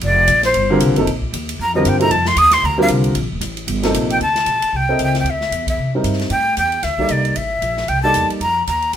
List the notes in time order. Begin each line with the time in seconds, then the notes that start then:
0.01 F1 D5, ride
0.28 A#1, hi-hat pedal, ride
0.43 C5, snare, ride
0.54 G1, ride
0.70 D3 G3 C4 F4 A#4
0.79 C2, hi-hat pedal, ride
0.90 A#1
0.96 F1 C3 F3 A#3 D#4 A4, ride
1.06 A#1, ride
1.22 kick
1.33 D#2, hi-hat pedal, ride
1.49 ride
1.59 F2 A#5
1.75 D3 G3 C4 F4 A#4 D#5
1.85 G2 G5, hi-hat pedal, ride
2.00 C3 F3 A#3 D#4 A4 A#5, ride
2.10 F2 A5, ride
2.25 C6, snare
2.36 D#2 D#6, hi-hat pedal, ride
2.51 C6, snare, ride
2.63 D2 A#5
2.78 D3 G3 C4 F4 A#4
2.82 F5
2.88 C2, hi-hat pedal, ride
3.04 ride
3.15 A#1, ride
3.24 F1
3.32 D#1
3.41 A1, hi-hat pedal, ride
3.57 ride
3.67 G1, ride
3.83 C3 F3 A#3 D#4 A4, snare, ride
3.94 A#1, hi-hat pedal, ride
4.10 G5, ride
4.20 D2 A5, ride
4.36 snare, ride
4.46 A#1, hi-hat pedal, ride
4.62 muted upright bass stroke, ride
4.73 C2 G5
4.89 C4 E4 A4 A#4 D#5
4.99 C#2, hi-hat pedal, ride
5.04 G5
5.14 snare, ride
5.20 G5
5.24 D2, ride
5.30 E5
5.41 snare
5.51 E2, hi-hat pedal, ride
5.67 E5, kick, ride
5.78 C3
5.95 G3 C4 D#4 E4 A#4
6.04 G2, hi-hat pedal, ride
6.13 snare
6.19 snare, ride
6.30 A2 G5, ride
6.57 E2 G5, hi-hat pedal, ride
6.72 ride
6.83 D2 E5, snare, ride
6.98 G3 A#3 D#4 A4 D5, kick
7.09 C2 D5, hi-hat pedal, ride
7.25 ride
7.36 A1 E5, ride
7.61 A#1, hi-hat pedal, ride
7.77 snare
7.88 C2 G5, ride
8.03 G3 A#3 D#4 A4 D5 A5
8.14 E2, hi-hat pedal, ride
8.30 muted upright bass stroke, ride
8.40 F2 A#5, ride
8.67 D#2 A#5, hi-hat pedal, ride
8.82 ride
8.93 G2, ride